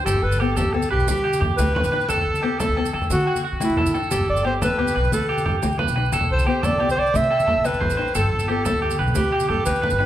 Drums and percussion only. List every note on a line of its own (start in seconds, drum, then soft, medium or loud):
0.06 muted conga medium
0.06 low agogo medium
0.06 maracas medium
0.14 low conga medium
0.31 high conga medium
0.31 maracas medium
0.40 low conga soft
0.40 low agogo medium
0.57 muted conga medium
0.57 low conga medium
0.57 maracas medium
0.74 low conga soft
0.74 low agogo medium
0.82 high conga medium
0.82 maracas medium
0.92 low agogo medium
0.99 low conga medium
0.99 maracas soft
1.08 muted conga medium
1.08 maracas medium
1.17 maracas soft
1.25 low agogo medium
1.33 high conga medium
1.33 maracas medium
1.42 low conga medium
1.50 low conga soft
1.58 muted conga medium
1.58 low agogo medium
1.58 maracas medium
1.76 low conga medium
1.83 high conga medium
1.83 maracas medium
1.92 low agogo medium
2.01 maracas soft
2.09 muted conga medium
2.09 low agogo medium
2.09 maracas medium
2.18 low conga medium
2.34 high conga medium
2.34 low conga soft
2.34 maracas medium
2.42 low agogo medium
2.60 muted conga medium
2.60 low conga medium
2.60 maracas medium
2.77 low conga soft
2.77 low agogo medium
2.85 high conga medium
2.85 maracas medium
2.93 low agogo medium
3.02 low conga medium
3.02 maracas soft
3.10 muted conga medium
3.10 low conga soft
3.10 maracas medium
3.19 low conga soft
3.27 low agogo medium
3.36 high conga medium
3.36 maracas medium
3.52 low conga soft
3.60 muted conga medium
3.60 low agogo medium
3.60 maracas loud
3.77 low conga medium
3.86 high conga medium
3.86 maracas medium
3.95 low agogo medium
4.03 low conga soft
4.03 maracas soft
4.11 muted conga medium
4.11 low agogo medium
4.11 maracas loud
4.19 low conga medium
4.37 high conga medium
4.37 maracas medium
4.45 low agogo medium
4.62 muted conga medium
4.62 low conga medium
4.62 maracas medium
4.71 low conga soft
4.78 low conga soft
4.78 low agogo medium
4.87 high conga medium
4.87 maracas medium
4.95 low agogo medium
5.04 low conga medium
5.04 maracas soft
5.12 muted conga medium
5.12 maracas medium
5.29 low agogo medium
5.38 high conga medium
5.38 maracas medium
5.46 low conga medium
5.55 low conga soft
5.62 muted conga medium
5.62 low agogo medium
5.62 maracas medium
5.72 maracas soft
5.79 low conga medium
5.88 high conga medium
5.88 maracas medium
5.96 low agogo medium
6.05 maracas soft
6.12 muted conga medium
6.12 low agogo medium
6.12 maracas medium
6.21 low conga medium
6.39 high conga medium
6.39 maracas medium
6.46 low conga soft
6.46 low agogo medium
6.63 muted conga medium
6.63 low conga medium
6.63 maracas medium
6.72 low conga soft
6.80 low conga soft
6.80 low agogo medium
6.89 high conga medium
6.89 maracas medium
6.97 low agogo medium
7.07 maracas soft
7.14 muted conga medium
7.14 maracas medium
7.23 maracas soft
7.32 low agogo medium
7.40 high conga medium
7.40 maracas medium
7.47 low conga medium
7.56 low conga soft
7.65 muted conga medium
7.65 low agogo medium
7.65 maracas medium
7.73 maracas soft
7.81 low conga medium
7.90 high conga medium
7.90 maracas medium
7.99 low agogo medium
8.07 maracas soft
8.15 muted conga medium
8.15 low agogo medium
8.15 maracas medium
8.24 low conga medium
8.39 high conga medium
8.39 maracas medium
8.49 low conga soft
8.49 low agogo medium
8.65 muted conga medium
8.65 low conga medium
8.65 maracas medium
8.75 low conga soft
8.83 low conga soft
8.83 low agogo medium
8.90 high conga medium
8.90 maracas medium
9.00 low agogo medium
9.07 low conga medium
9.07 maracas soft
9.15 muted conga medium
9.15 maracas medium
9.34 low agogo medium
9.40 high conga medium
9.40 maracas medium
9.50 low conga medium
9.59 low conga soft
9.66 muted conga medium
9.66 low agogo medium
9.66 maracas medium
9.75 maracas soft
9.84 low conga medium
9.90 high conga medium
9.90 maracas medium
10.00 low agogo medium